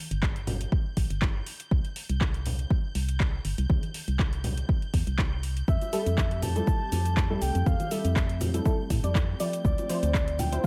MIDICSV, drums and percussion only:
0, 0, Header, 1, 2, 480
1, 0, Start_track
1, 0, Tempo, 495868
1, 1659, Time_signature, 4, 2, 24, 8
1, 10326, End_track
2, 0, Start_track
2, 0, Title_t, "Drums"
2, 109, Note_on_c, 9, 42, 69
2, 205, Note_off_c, 9, 42, 0
2, 218, Note_on_c, 9, 36, 118
2, 221, Note_on_c, 9, 39, 124
2, 315, Note_off_c, 9, 36, 0
2, 318, Note_off_c, 9, 39, 0
2, 348, Note_on_c, 9, 42, 52
2, 444, Note_off_c, 9, 42, 0
2, 455, Note_on_c, 9, 64, 87
2, 458, Note_on_c, 9, 46, 96
2, 552, Note_off_c, 9, 64, 0
2, 555, Note_off_c, 9, 46, 0
2, 588, Note_on_c, 9, 42, 66
2, 685, Note_off_c, 9, 42, 0
2, 698, Note_on_c, 9, 36, 121
2, 795, Note_off_c, 9, 36, 0
2, 938, Note_on_c, 9, 36, 63
2, 938, Note_on_c, 9, 46, 104
2, 1034, Note_off_c, 9, 46, 0
2, 1035, Note_off_c, 9, 36, 0
2, 1068, Note_on_c, 9, 42, 65
2, 1165, Note_off_c, 9, 42, 0
2, 1178, Note_on_c, 9, 36, 123
2, 1181, Note_on_c, 9, 39, 127
2, 1275, Note_off_c, 9, 36, 0
2, 1278, Note_off_c, 9, 39, 0
2, 1418, Note_on_c, 9, 46, 95
2, 1515, Note_off_c, 9, 46, 0
2, 1547, Note_on_c, 9, 42, 68
2, 1644, Note_off_c, 9, 42, 0
2, 1658, Note_on_c, 9, 36, 121
2, 1755, Note_off_c, 9, 36, 0
2, 1787, Note_on_c, 9, 42, 51
2, 1884, Note_off_c, 9, 42, 0
2, 1897, Note_on_c, 9, 46, 105
2, 1994, Note_off_c, 9, 46, 0
2, 2027, Note_on_c, 9, 42, 65
2, 2124, Note_off_c, 9, 42, 0
2, 2138, Note_on_c, 9, 36, 117
2, 2141, Note_on_c, 9, 39, 121
2, 2235, Note_off_c, 9, 36, 0
2, 2238, Note_off_c, 9, 39, 0
2, 2267, Note_on_c, 9, 42, 50
2, 2364, Note_off_c, 9, 42, 0
2, 2377, Note_on_c, 9, 46, 97
2, 2385, Note_on_c, 9, 64, 74
2, 2474, Note_off_c, 9, 46, 0
2, 2482, Note_off_c, 9, 64, 0
2, 2507, Note_on_c, 9, 42, 63
2, 2604, Note_off_c, 9, 42, 0
2, 2618, Note_on_c, 9, 36, 125
2, 2715, Note_off_c, 9, 36, 0
2, 2857, Note_on_c, 9, 46, 106
2, 2953, Note_off_c, 9, 46, 0
2, 2987, Note_on_c, 9, 42, 64
2, 3084, Note_off_c, 9, 42, 0
2, 3098, Note_on_c, 9, 36, 123
2, 3100, Note_on_c, 9, 39, 123
2, 3195, Note_off_c, 9, 36, 0
2, 3197, Note_off_c, 9, 39, 0
2, 3337, Note_on_c, 9, 46, 95
2, 3434, Note_off_c, 9, 46, 0
2, 3467, Note_on_c, 9, 42, 65
2, 3564, Note_off_c, 9, 42, 0
2, 3578, Note_on_c, 9, 36, 120
2, 3581, Note_on_c, 9, 63, 89
2, 3675, Note_off_c, 9, 36, 0
2, 3678, Note_off_c, 9, 63, 0
2, 3707, Note_on_c, 9, 42, 51
2, 3804, Note_off_c, 9, 42, 0
2, 3817, Note_on_c, 9, 46, 109
2, 3914, Note_off_c, 9, 46, 0
2, 3948, Note_on_c, 9, 42, 63
2, 4045, Note_off_c, 9, 42, 0
2, 4058, Note_on_c, 9, 36, 116
2, 4061, Note_on_c, 9, 39, 117
2, 4155, Note_off_c, 9, 36, 0
2, 4158, Note_off_c, 9, 39, 0
2, 4188, Note_on_c, 9, 42, 50
2, 4285, Note_off_c, 9, 42, 0
2, 4298, Note_on_c, 9, 46, 96
2, 4298, Note_on_c, 9, 64, 79
2, 4395, Note_off_c, 9, 46, 0
2, 4395, Note_off_c, 9, 64, 0
2, 4428, Note_on_c, 9, 42, 61
2, 4525, Note_off_c, 9, 42, 0
2, 4538, Note_on_c, 9, 36, 120
2, 4635, Note_off_c, 9, 36, 0
2, 4668, Note_on_c, 9, 42, 35
2, 4764, Note_off_c, 9, 42, 0
2, 4778, Note_on_c, 9, 36, 62
2, 4778, Note_on_c, 9, 46, 108
2, 4875, Note_off_c, 9, 36, 0
2, 4875, Note_off_c, 9, 46, 0
2, 4909, Note_on_c, 9, 42, 62
2, 5005, Note_off_c, 9, 42, 0
2, 5019, Note_on_c, 9, 36, 120
2, 5022, Note_on_c, 9, 39, 120
2, 5115, Note_off_c, 9, 36, 0
2, 5119, Note_off_c, 9, 39, 0
2, 5259, Note_on_c, 9, 46, 93
2, 5355, Note_off_c, 9, 46, 0
2, 5389, Note_on_c, 9, 42, 62
2, 5485, Note_off_c, 9, 42, 0
2, 5499, Note_on_c, 9, 36, 117
2, 5501, Note_on_c, 9, 82, 45
2, 5596, Note_off_c, 9, 36, 0
2, 5597, Note_off_c, 9, 82, 0
2, 5629, Note_on_c, 9, 42, 50
2, 5631, Note_on_c, 9, 82, 31
2, 5634, Note_on_c, 9, 60, 49
2, 5725, Note_off_c, 9, 42, 0
2, 5727, Note_off_c, 9, 82, 0
2, 5730, Note_off_c, 9, 60, 0
2, 5739, Note_on_c, 9, 46, 102
2, 5741, Note_on_c, 9, 82, 76
2, 5836, Note_off_c, 9, 46, 0
2, 5838, Note_off_c, 9, 82, 0
2, 5870, Note_on_c, 9, 42, 65
2, 5872, Note_on_c, 9, 82, 35
2, 5967, Note_off_c, 9, 42, 0
2, 5969, Note_off_c, 9, 82, 0
2, 5979, Note_on_c, 9, 36, 119
2, 5982, Note_on_c, 9, 82, 44
2, 5983, Note_on_c, 9, 39, 112
2, 6076, Note_off_c, 9, 36, 0
2, 6079, Note_off_c, 9, 82, 0
2, 6080, Note_off_c, 9, 39, 0
2, 6109, Note_on_c, 9, 42, 49
2, 6206, Note_off_c, 9, 42, 0
2, 6217, Note_on_c, 9, 64, 73
2, 6218, Note_on_c, 9, 60, 56
2, 6219, Note_on_c, 9, 46, 93
2, 6221, Note_on_c, 9, 82, 78
2, 6314, Note_off_c, 9, 60, 0
2, 6314, Note_off_c, 9, 64, 0
2, 6316, Note_off_c, 9, 46, 0
2, 6318, Note_off_c, 9, 82, 0
2, 6345, Note_on_c, 9, 60, 61
2, 6349, Note_on_c, 9, 42, 62
2, 6351, Note_on_c, 9, 82, 34
2, 6442, Note_off_c, 9, 60, 0
2, 6446, Note_off_c, 9, 42, 0
2, 6448, Note_off_c, 9, 82, 0
2, 6459, Note_on_c, 9, 36, 117
2, 6461, Note_on_c, 9, 82, 45
2, 6556, Note_off_c, 9, 36, 0
2, 6558, Note_off_c, 9, 82, 0
2, 6700, Note_on_c, 9, 46, 105
2, 6702, Note_on_c, 9, 82, 76
2, 6708, Note_on_c, 9, 60, 55
2, 6796, Note_off_c, 9, 46, 0
2, 6798, Note_off_c, 9, 82, 0
2, 6804, Note_off_c, 9, 60, 0
2, 6829, Note_on_c, 9, 42, 62
2, 6831, Note_on_c, 9, 82, 33
2, 6926, Note_off_c, 9, 42, 0
2, 6928, Note_off_c, 9, 82, 0
2, 6939, Note_on_c, 9, 36, 121
2, 6941, Note_on_c, 9, 82, 45
2, 6942, Note_on_c, 9, 39, 116
2, 7036, Note_off_c, 9, 36, 0
2, 7038, Note_off_c, 9, 82, 0
2, 7039, Note_off_c, 9, 39, 0
2, 7179, Note_on_c, 9, 46, 92
2, 7181, Note_on_c, 9, 82, 78
2, 7275, Note_off_c, 9, 46, 0
2, 7277, Note_off_c, 9, 82, 0
2, 7308, Note_on_c, 9, 42, 63
2, 7311, Note_on_c, 9, 82, 33
2, 7405, Note_off_c, 9, 42, 0
2, 7407, Note_off_c, 9, 82, 0
2, 7419, Note_on_c, 9, 36, 117
2, 7420, Note_on_c, 9, 82, 45
2, 7424, Note_on_c, 9, 63, 77
2, 7516, Note_off_c, 9, 36, 0
2, 7517, Note_off_c, 9, 82, 0
2, 7520, Note_off_c, 9, 63, 0
2, 7548, Note_on_c, 9, 60, 49
2, 7549, Note_on_c, 9, 42, 52
2, 7551, Note_on_c, 9, 82, 33
2, 7645, Note_off_c, 9, 60, 0
2, 7646, Note_off_c, 9, 42, 0
2, 7648, Note_off_c, 9, 82, 0
2, 7659, Note_on_c, 9, 46, 99
2, 7661, Note_on_c, 9, 82, 80
2, 7756, Note_off_c, 9, 46, 0
2, 7758, Note_off_c, 9, 82, 0
2, 7789, Note_on_c, 9, 42, 66
2, 7791, Note_on_c, 9, 82, 35
2, 7886, Note_off_c, 9, 42, 0
2, 7888, Note_off_c, 9, 82, 0
2, 7899, Note_on_c, 9, 36, 113
2, 7901, Note_on_c, 9, 82, 46
2, 7903, Note_on_c, 9, 39, 115
2, 7995, Note_off_c, 9, 36, 0
2, 7998, Note_off_c, 9, 82, 0
2, 7999, Note_off_c, 9, 39, 0
2, 8029, Note_on_c, 9, 42, 50
2, 8126, Note_off_c, 9, 42, 0
2, 8139, Note_on_c, 9, 46, 91
2, 8140, Note_on_c, 9, 64, 68
2, 8141, Note_on_c, 9, 82, 82
2, 8142, Note_on_c, 9, 60, 57
2, 8236, Note_off_c, 9, 46, 0
2, 8237, Note_off_c, 9, 64, 0
2, 8238, Note_off_c, 9, 60, 0
2, 8238, Note_off_c, 9, 82, 0
2, 8264, Note_on_c, 9, 60, 59
2, 8268, Note_on_c, 9, 42, 64
2, 8270, Note_on_c, 9, 82, 35
2, 8361, Note_off_c, 9, 60, 0
2, 8365, Note_off_c, 9, 42, 0
2, 8367, Note_off_c, 9, 82, 0
2, 8378, Note_on_c, 9, 36, 117
2, 8380, Note_on_c, 9, 82, 47
2, 8475, Note_off_c, 9, 36, 0
2, 8477, Note_off_c, 9, 82, 0
2, 8618, Note_on_c, 9, 36, 59
2, 8618, Note_on_c, 9, 46, 102
2, 8620, Note_on_c, 9, 82, 80
2, 8715, Note_off_c, 9, 36, 0
2, 8715, Note_off_c, 9, 46, 0
2, 8717, Note_off_c, 9, 82, 0
2, 8749, Note_on_c, 9, 42, 64
2, 8751, Note_on_c, 9, 82, 35
2, 8845, Note_off_c, 9, 42, 0
2, 8847, Note_off_c, 9, 82, 0
2, 8858, Note_on_c, 9, 36, 116
2, 8861, Note_on_c, 9, 82, 48
2, 8862, Note_on_c, 9, 39, 116
2, 8955, Note_off_c, 9, 36, 0
2, 8958, Note_off_c, 9, 82, 0
2, 8959, Note_off_c, 9, 39, 0
2, 9098, Note_on_c, 9, 46, 88
2, 9100, Note_on_c, 9, 82, 81
2, 9195, Note_off_c, 9, 46, 0
2, 9197, Note_off_c, 9, 82, 0
2, 9228, Note_on_c, 9, 42, 64
2, 9230, Note_on_c, 9, 82, 35
2, 9325, Note_off_c, 9, 42, 0
2, 9327, Note_off_c, 9, 82, 0
2, 9338, Note_on_c, 9, 36, 114
2, 9341, Note_on_c, 9, 82, 48
2, 9435, Note_off_c, 9, 36, 0
2, 9437, Note_off_c, 9, 82, 0
2, 9469, Note_on_c, 9, 42, 54
2, 9471, Note_on_c, 9, 82, 33
2, 9477, Note_on_c, 9, 60, 53
2, 9565, Note_off_c, 9, 42, 0
2, 9567, Note_off_c, 9, 82, 0
2, 9573, Note_off_c, 9, 60, 0
2, 9578, Note_on_c, 9, 46, 99
2, 9580, Note_on_c, 9, 82, 82
2, 9675, Note_off_c, 9, 46, 0
2, 9677, Note_off_c, 9, 82, 0
2, 9708, Note_on_c, 9, 42, 68
2, 9710, Note_on_c, 9, 82, 36
2, 9805, Note_off_c, 9, 42, 0
2, 9807, Note_off_c, 9, 82, 0
2, 9818, Note_on_c, 9, 36, 111
2, 9821, Note_on_c, 9, 82, 47
2, 9822, Note_on_c, 9, 39, 118
2, 9915, Note_off_c, 9, 36, 0
2, 9917, Note_off_c, 9, 82, 0
2, 9919, Note_off_c, 9, 39, 0
2, 9948, Note_on_c, 9, 42, 53
2, 10045, Note_off_c, 9, 42, 0
2, 10057, Note_on_c, 9, 64, 74
2, 10058, Note_on_c, 9, 46, 91
2, 10060, Note_on_c, 9, 60, 65
2, 10060, Note_on_c, 9, 82, 84
2, 10154, Note_off_c, 9, 64, 0
2, 10155, Note_off_c, 9, 46, 0
2, 10157, Note_off_c, 9, 60, 0
2, 10157, Note_off_c, 9, 82, 0
2, 10187, Note_on_c, 9, 60, 65
2, 10188, Note_on_c, 9, 42, 68
2, 10190, Note_on_c, 9, 82, 35
2, 10284, Note_off_c, 9, 60, 0
2, 10285, Note_off_c, 9, 42, 0
2, 10287, Note_off_c, 9, 82, 0
2, 10326, End_track
0, 0, End_of_file